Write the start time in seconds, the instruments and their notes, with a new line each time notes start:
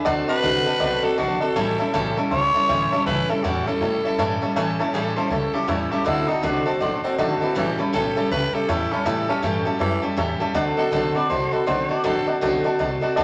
0.05 upright bass D2, steel-string acoustic guitar D3 A3 C4 F#4 A4, honky-tonk piano D5 F#5 A5
0.28 steel-string acoustic guitar C4 F#4 A4, tenor saxophone B4, honky-tonk piano D5 F#5 C6, muted upright bass stroke
0.43 upright bass C2, steel-string acoustic guitar D3 A3 C4 F#4 A4, honky-tonk piano D5 F#5 A5
0.66 steel-string acoustic guitar C4 F#4 A4, honky-tonk piano D5 F#5 A5, muted upright bass stroke
0.80 upright bass B1, steel-string acoustic guitar A3 C4 F#4 A4, honky-tonk piano D5 F#5 A5
1.03 steel-string acoustic guitar C4 F#4 A4, tenor saxophone A4, honky-tonk piano D5 F#5 A5, muted upright bass stroke
1.17 upright bass A#1, steel-string acoustic guitar D3 A3 C4 F#4 A4, tenor saxophone F#4, honky-tonk piano D5 F#5 A5
1.40 steel-string acoustic guitar C4 F#4 A4, tenor saxophone A4, honky-tonk piano D5 F#5 A5, muted upright bass stroke
1.56 upright bass A1, steel-string acoustic guitar A2 E3 G3 C#4 E4 A4, honky-tonk piano C#5 E5 A5
1.79 steel-string acoustic guitar G3 C#4 E4 A4, honky-tonk piano C#5 E5 A5, muted upright bass stroke
1.93 upright bass B1, steel-string acoustic guitar A2 E3 G3 C#4 E4 A4, honky-tonk piano C#5 E5 A5
2.17 steel-string acoustic guitar G3 C#4 E4 A4, honky-tonk piano C#5 E5 A5, muted upright bass stroke
2.30 upright bass C#2, steel-string acoustic guitar G3 C#4 E4 A4, honky-tonk piano C#5 E5 A5, tenor saxophone C#5
2.54 steel-string acoustic guitar G3 C#4 E4 A4, honky-tonk piano C#5 E5 G5, muted upright bass stroke
2.68 upright bass D2, steel-string acoustic guitar A2 E3 G3 C#4 E4 A4, honky-tonk piano C#5 E5 G5
2.92 steel-string acoustic guitar G3 C#4 E4 A4, honky-tonk piano C#5 E5 A5
3.06 upright bass C#2, steel-string acoustic guitar A2 E3 G3 C#4 E4 A4, tenor saxophone B4, honky-tonk piano C#5 E5 A5
3.29 steel-string acoustic guitar G3 C#4 E4 A4, tenor saxophone A4, honky-tonk piano C#5 E5 A5, muted upright bass stroke
3.43 upright bass E2, steel-string acoustic guitar A2 E3 G3 C#4 E4 A4, tenor saxophone F#4, honky-tonk piano C#5 E5 A5
3.67 steel-string acoustic guitar G3 C#4 E4 A4, tenor saxophone A4, honky-tonk piano C#5 E5 A5, muted upright bass stroke
3.81 upright bass A2, steel-string acoustic guitar G3 C#4 E4 A4, honky-tonk piano C#5 E5 A5
4.03 steel-string acoustic guitar G3 C#4 E4 A4, honky-tonk piano C#5 E5 A5, muted upright bass stroke
4.18 upright bass G2, steel-string acoustic guitar A2 E3 G3 C#4 E4 A4, honky-tonk piano C#5 E5 A5
4.42 steel-string acoustic guitar G3 C#4 E4 A4, honky-tonk piano C#5 E5 A5
4.56 upright bass A2, steel-string acoustic guitar A2 E3 G3 C#4 E4 A4, honky-tonk piano C#5 E5 A5
4.79 steel-string acoustic guitar G3 C#4 E4 A4, honky-tonk piano C#5 E5 A5, muted upright bass stroke
4.93 upright bass A1, steel-string acoustic guitar A2 E3 G3 C#4 E4 A4, tenor saxophone A4, honky-tonk piano C#5 E5 A5
5.16 steel-string acoustic guitar G3 C#4 E4 A4, tenor saxophone C5, honky-tonk piano C#5 E5 A5, muted upright bass stroke
5.30 upright bass C#2, steel-string acoustic guitar G3 C#4 E4 A4, tenor saxophone A4, honky-tonk piano C#5 E5 A5
5.54 steel-string acoustic guitar G3 C#4 E4 A4, tenor saxophone G4, honky-tonk piano C#5 E5 A5, muted upright bass stroke
5.67 upright bass E2, steel-string acoustic guitar A2 E3 G3 C#4 E4 A4, tenor saxophone E4, honky-tonk piano C#5 E5 A5
5.91 steel-string acoustic guitar G3 C#4 E4 A4, tenor saxophone G4, honky-tonk piano C#5 E5 A5, muted upright bass stroke
6.05 upright bass D2, steel-string acoustic guitar D3 A3 C4 F#4 A4, tenor saxophone E4, honky-tonk piano D5 F#5 A5
6.28 steel-string acoustic guitar C4 F#4 A4, tenor saxophone D#4, honky-tonk piano D5 F#5 A5, muted upright bass stroke
6.43 upright bass C2, steel-string acoustic guitar D3 A3 C4 F#4 A4, tenor saxophone D4, honky-tonk piano D5 F#5 A5
6.66 tenor saxophone C4, steel-string acoustic guitar C4 F#4 A4, honky-tonk piano D5 F#5 A5
6.80 upright bass A1, steel-string acoustic guitar A3 C4 F#4 A4, tenor saxophone D4, honky-tonk piano D5 F#5 C6
7.03 tenor saxophone C4, steel-string acoustic guitar C4 F#4 A4, honky-tonk piano D5 F#5 A5, muted upright bass stroke
7.18 upright bass G#1, steel-string acoustic guitar D3 A3 C4 F#4 A4, tenor saxophone A3, honky-tonk piano D5 F#5 A5
7.41 tenor saxophone E3, steel-string acoustic guitar C4 F#4 A4, honky-tonk piano D5 F#5 B5, muted upright bass stroke
7.55 upright bass A1, steel-string acoustic guitar A2 E3 G3 C#4 G4 A4, tenor saxophone E3, honky-tonk piano C#5 E5 A5
7.78 steel-string acoustic guitar G3 C#4 G4 A4, honky-tonk piano C#5 E5 B5, muted upright bass stroke
7.93 upright bass B1, steel-string acoustic guitar A2 E3 G3 C#4 G4 A4, tenor saxophone A4, honky-tonk piano C#5 E5 A5
8.16 steel-string acoustic guitar G3 C#4 G4 A4, honky-tonk piano C#5 E5 A5, muted upright bass stroke
8.31 upright bass C#2, steel-string acoustic guitar G3 C#4 G4 A4, tenor saxophone B4, honky-tonk piano C#5 E5 A5
8.53 steel-string acoustic guitar G3 C#4 G4 A4, tenor saxophone A4, honky-tonk piano C#5 E5 A5, muted upright bass stroke
8.68 upright bass E2, steel-string acoustic guitar A2 E3 G3 C#4 G4 A4, tenor saxophone E4, honky-tonk piano C#5 E5 A5
8.91 steel-string acoustic guitar G3 C#4 G4 A4, tenor saxophone C#4, honky-tonk piano C#5 E5 B5, muted upright bass stroke
9.05 upright bass A2, steel-string acoustic guitar A2 E3 G3 C#4 G4 A4, tenor saxophone E4, honky-tonk piano C#5 E5 A5
9.28 steel-string acoustic guitar G3 C#4 G4 A4, tenor saxophone C#4, honky-tonk piano C#5 E5 A5, muted upright bass stroke
9.42 upright bass G2, steel-string acoustic guitar A2 E3 G3 C#4 G4 A4, tenor saxophone A3, honky-tonk piano C#5 E5 A5
9.65 tenor saxophone F#3, steel-string acoustic guitar G3 C#4 G4 A4, honky-tonk piano C#5 E5 A5, muted upright bass stroke
9.79 upright bass F#2, tenor saxophone E3, steel-string acoustic guitar G3 C#4 G4 A4, honky-tonk piano C#5 E5 A5
10.02 steel-string acoustic guitar G3 C#4 G4 A4, honky-tonk piano C#5 E5 A5, muted upright bass stroke
10.16 upright bass E2, steel-string acoustic guitar A2 E3 G3 C#4 G4 A4, honky-tonk piano C#5 E5 A5
10.39 steel-string acoustic guitar G3 C#4 G4 A4, honky-tonk piano C#5 E5 A5, muted upright bass stroke
10.54 upright bass D2, steel-string acoustic guitar D3 A3 C4 F#4 A4, honky-tonk piano D5 F#5 A5
10.77 steel-string acoustic guitar C4 F#4 A4, tenor saxophone A4, honky-tonk piano D5 F#5 A5
10.92 upright bass B1, steel-string acoustic guitar D3 A3 C4 F#4 A4, honky-tonk piano D5 F#5 A5
11.15 steel-string acoustic guitar C4 F#4 A4, honky-tonk piano D5 F#5 B5, tenor saxophone D5, muted upright bass stroke
11.29 upright bass C2, steel-string acoustic guitar A3 C4 F#4 A4, tenor saxophone C5, honky-tonk piano D5 F#5 A5
11.51 steel-string acoustic guitar C4 F#4 A4, tenor saxophone A4, honky-tonk piano D5 F#5 B5, muted upright bass stroke
11.66 upright bass B1, steel-string acoustic guitar D3 A3 C4 F#4 A4, tenor saxophone C5, honky-tonk piano D5 F#5 A5
11.89 steel-string acoustic guitar C4 F#4 A4, tenor saxophone D5, honky-tonk piano D5 F#5 A5, muted upright bass stroke
12.04 upright bass A1, steel-string acoustic guitar D3 A3 C4 F#4 A4, tenor saxophone A4, honky-tonk piano D5 F#5 A5
12.27 steel-string acoustic guitar C4 F#4 A4, honky-tonk piano D5 F#5 A5, muted upright bass stroke
12.41 upright bass B1, steel-string acoustic guitar D3 A3 C4 F#4 A4, honky-tonk piano D5 F#5 A5
12.64 steel-string acoustic guitar C4 F#4 A4, honky-tonk piano D5 F#5 A5
12.79 upright bass C2, steel-string acoustic guitar A3 C4 F#4 A4, honky-tonk piano D5 F#5 A5
13.01 steel-string acoustic guitar C4 F#4 A4, honky-tonk piano D5 F#5 A5, muted upright bass stroke
13.16 upright bass D2, steel-string acoustic guitar D3 A3 C4 F#4 A4, honky-tonk piano D5 F#5 A5